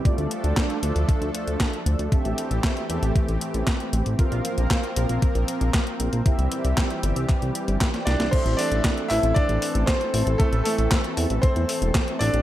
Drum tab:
CC |----------------|----------------|----------------|----------------|
HH |xxxxxxxxxxxxxxxx|xxxxxxxxxxxxxxxx|xxxxxxxxxxxxxxxx|xxxxxxxxxxxxxxxx|
CP |----x-------x---|----x-------x---|----x-------x---|----x---x---x---|
SD |----o-------o---|----o-------o---|----o-------o---|----o-------oooo|
BD |o---o---o---o---|o---o---o---o---|o---o---o---o---|o---o---o---o---|

CC |x---------------|----------------|
HH |xxoxxxoxxxoxxxox|xxoxxxoxxxoxxxox|
CP |----x-x-----x---|----x-------x---|
SD |----o-------o---|----o-------o---|
BD |o---o---o---o---|o---o---o---o---|